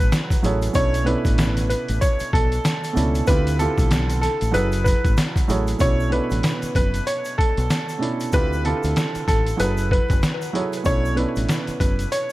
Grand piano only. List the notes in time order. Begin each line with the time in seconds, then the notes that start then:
Already playing: F#3 E4 G#4 A4 B4
0.42 F#3 E4 G#4 A4 C#5
0.73 B2 A3 C#4 D4 E4
1.05 B2 A3 C#4 D4 E4
2.93 B2 A3 C#4 D4 E4
3.27 D3 C4 E4 F4 G4
3.58 D3 C4 E4 F4 G4
4.51 F#3 E4 G#4 A4 B4
5.48 F#3 E4 G#4 A4 C#5
5.78 B2 A3 C#4 D4 E4
6.10 B2 A3 C#4 D4 E4
7.99 B2 A3 C#4 D4 E4
8.32 D3 C4 E4 F4 G4
8.64 D3 C4 E4 F4 G4
9.57 F#3 E4 G#4 A4 B4
10.53 F#3 E4 G#4 A4 C#5
10.84 B2 A3 C#4 D4 E4
11.15 B2 A3 C#4 D4 E4